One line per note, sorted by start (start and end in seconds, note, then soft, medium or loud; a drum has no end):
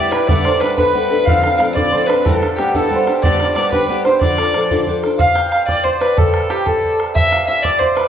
0.00 0.12 G3 medium
0.00 0.12 B3 medium
0.00 0.11 E4 medium
0.00 0.10 G4 medium
0.00 1.79 G4 medium
0.00 1.74 A4 medium
0.00 0.12 B4 medium
0.00 0.13 D5 loud
0.00 0.14 D5 medium
0.00 0.28 D5 medium
0.00 1.33 E5 medium
0.11 0.28 G3 soft
0.11 0.28 B3 soft
0.11 0.29 E4 soft
0.11 0.28 G4 medium
0.11 0.29 B4 medium
0.11 0.51 B4 medium
0.11 0.30 B4 medium
0.11 bodhran medium
0.28 0.45 G2 medium
0.28 0.45 D3 medium
0.28 0.45 G3 medium
0.28 0.45 B3 medium
0.28 0.44 D4 medium
0.28 0.43 A4 medium
0.28 0.62 D5 loud
0.28 1.76 D5 medium
0.28 0.63 D5 medium
0.28 bodhran loud
0.44 0.59 G3 soft
0.44 0.61 B3 soft
0.44 0.62 D4 soft
0.44 0.61 A4 soft
0.44 0.67 C5 medium
0.44 bodhran medium
0.60 0.77 G3 medium
0.60 0.77 B3 medium
0.60 0.77 D4 medium
0.60 0.76 A4 medium
0.60 0.75 B4 medium
0.60 0.78 B4 medium
0.60 0.77 B4 medium
0.60 bodhran medium
0.76 0.95 G2 medium
0.76 0.95 D3 medium
0.76 0.93 G3 medium
0.76 0.93 B3 medium
0.76 0.94 D4 medium
0.76 0.94 A4 medium
0.76 1.27 B4 medium
0.76 1.98 B4 medium
0.76 1.29 B4 medium
0.76 bodhran medium
0.94 1.10 G3 medium
0.94 1.11 B3 medium
0.94 1.10 D4 medium
0.94 1.09 A4 medium
0.94 bodhran soft
1.10 1.27 G3 soft
1.10 1.28 B3 soft
1.10 1.27 D4 soft
1.10 1.27 A4 medium
1.25 1.43 D3 medium
1.25 1.44 F3 medium
1.25 1.44 C4 medium
1.25 1.44 D4 medium
1.25 1.42 A4 medium
1.25 1.57 F5 loud
1.25 1.58 F5 medium
1.25 bodhran medium
1.43 1.58 C4 soft
1.43 1.59 D4 soft
1.43 1.60 A4 soft
1.43 3.50 G5 medium
1.43 bodhran medium
1.58 1.75 F3 medium
1.58 1.75 C4 medium
1.58 1.75 D4 medium
1.58 1.74 A4 medium
1.58 1.65 F5 medium
1.58 3.81 F5 medium
1.58 1.77 F5 medium
1.58 bodhran medium
1.74 1.93 D3 medium
1.74 1.91 F3 medium
1.74 1.92 C4 medium
1.74 1.92 D4 medium
1.74 1.92 A4 medium
1.74 2.08 D5 medium
1.74 3.22 D5 medium
1.74 2.10 D5 medium
1.74 bodhran medium
1.92 2.09 F3 medium
1.92 2.09 C4 medium
1.92 2.09 D4 medium
1.92 2.07 A4 medium
1.92 2.14 C5 medium
1.92 bodhran soft
2.07 2.26 D4 soft
2.07 2.25 A4 soft
2.07 2.25 B4 medium
2.07 3.01 B4 medium
2.07 2.26 B4 medium
2.07 bodhran medium
2.11 2.26 C4 soft
2.23 2.41 E3 medium
2.23 2.42 G3 medium
2.23 2.42 B3 medium
2.23 2.42 D4 medium
2.23 2.40 G4 medium
2.23 2.58 A4 medium
2.23 2.42 A4 medium
2.23 2.59 A4 medium
2.23 bodhran medium
2.41 2.57 B3 soft
2.41 2.58 D4 soft
2.41 2.58 G4 soft
2.41 2.75 A4 medium
2.41 bodhran medium
2.56 2.74 G3 medium
2.56 2.74 B3 medium
2.56 2.73 D4 medium
2.56 2.73 G4 medium
2.56 5.72 G4 medium
2.56 2.75 G4 medium
2.56 2.73 G4 medium
2.56 bodhran medium
2.73 2.91 E3 medium
2.73 2.89 G3 medium
2.73 2.90 B3 medium
2.73 2.91 D4 medium
2.73 2.90 G4 medium
2.73 3.08 A4 medium
2.73 5.68 A4 medium
2.73 3.09 A4 medium
2.73 bodhran medium
2.90 3.07 G3 medium
2.90 3.07 B3 medium
2.90 3.07 D4 medium
2.90 3.05 G4 medium
2.90 bodhran soft
2.95 3.78 C5 medium
3.07 3.23 B3 soft
3.07 3.24 D4 medium
3.07 3.23 G4 medium
3.07 bodhran medium
3.23 3.40 G2 medium
3.23 3.40 D3 medium
3.23 3.40 G3 medium
3.23 3.40 B3 medium
3.23 3.40 D4 medium
3.23 3.39 G4 medium
3.23 3.34 D5 medium
3.23 3.53 D5 medium
3.23 3.54 D5 medium
3.23 bodhran medium
3.34 3.44 D5 medium
3.40 3.55 G3 soft
3.40 3.56 B3 soft
3.40 3.57 D4 medium
3.40 3.56 G4 medium
3.40 bodhran medium
3.45 3.55 D5 medium
3.55 3.72 G3 medium
3.55 3.72 B3 medium
3.55 3.72 D4 medium
3.55 3.71 G4 medium
3.55 3.70 D5 medium
3.55 4.21 D5 medium
3.55 3.71 D5 medium
3.55 bodhran medium
3.71 3.90 G2 medium
3.71 3.90 D3 medium
3.71 3.87 G3 medium
3.71 3.88 B3 medium
3.71 3.89 D4 medium
3.71 3.89 G4 medium
3.71 3.87 B4 loud
3.71 3.87 B4 medium
3.71 4.11 B4 medium
3.71 bodhran medium
3.88 4.05 G3 medium
3.88 4.05 B3 medium
3.88 4.05 D4 medium
3.88 4.04 G4 medium
3.88 4.03 B4 medium
3.88 4.05 B4 medium
3.88 bodhran soft
4.04 4.21 G3 soft
4.04 4.22 B3 soft
4.04 4.21 D4 medium
4.04 4.21 G4 medium
4.04 4.21 C5 medium
4.04 4.20 C5 medium
4.04 5.84 C5 medium
4.04 bodhran medium
4.21 4.38 D3 medium
4.21 4.38 F3 medium
4.21 4.38 D4 medium
4.21 4.38 F4 medium
4.21 4.37 A4 medium
4.21 4.82 D5 medium
4.21 5.68 D5 medium
4.21 bodhran medium
4.38 4.54 D4 soft
4.38 4.55 F4 medium
4.38 4.54 A4 soft
4.38 bodhran medium
4.54 4.70 F3 medium
4.54 4.71 D4 medium
4.54 4.70 F4 medium
4.54 4.70 A4 medium
4.54 bodhran medium
4.71 4.88 D3 medium
4.71 4.85 F3 medium
4.71 4.87 D4 medium
4.71 4.87 F4 medium
4.71 4.87 A4 medium
4.71 bodhran medium
4.86 5.03 F3 medium
4.86 5.03 D4 medium
4.86 5.03 F4 medium
4.86 5.02 A4 medium
4.86 bodhran soft
5.03 5.21 D4 soft
5.03 5.20 F4 soft
5.03 5.19 A4 medium
5.03 bodhran medium
5.18 5.50 F5 medium
5.18 5.49 F5 loud
5.18 7.21 F5 medium
5.18 bodhran medium
5.35 7.42 G5 loud
5.35 bodhran medium
5.51 5.67 F5 medium
5.51 bodhran medium
5.67 5.86 D5 loud
5.67 7.64 D5 medium
5.67 6.19 D5 medium
5.67 bodhran medium
5.84 6.02 C5 medium
5.84 6.07 C5 medium
5.84 bodhran soft
6.01 6.19 B4 medium
6.01 7.87 B4 medium
6.01 bodhran medium
6.17 6.66 A4 medium
6.17 6.48 A4 medium
6.17 6.52 A4 loud
6.17 bodhran medium
6.34 bodhran medium
6.50 8.08 G4 medium
6.50 6.67 G4 medium
6.50 bodhran medium
6.66 7.03 A4 medium
6.66 8.08 A4 medium
6.66 7.01 A4 medium
6.66 bodhran medium
6.84 bodhran soft
7.00 bodhran medium
7.15 7.46 E5 loud
7.15 7.38 E5 medium
7.15 7.47 E5 medium
7.15 bodhran medium
7.32 7.54 F5 medium
7.32 bodhran medium
7.47 7.64 E5 medium
7.47 8.08 E5 medium
7.47 7.65 E5 medium
7.63 7.81 D5 loud
7.63 8.08 D5 medium
7.63 7.98 D5 medium
7.63 bodhran medium
7.79 7.97 C5 medium
7.79 8.03 C5 medium
7.79 bodhran soft
7.95 8.08 B4 medium
7.95 bodhran medium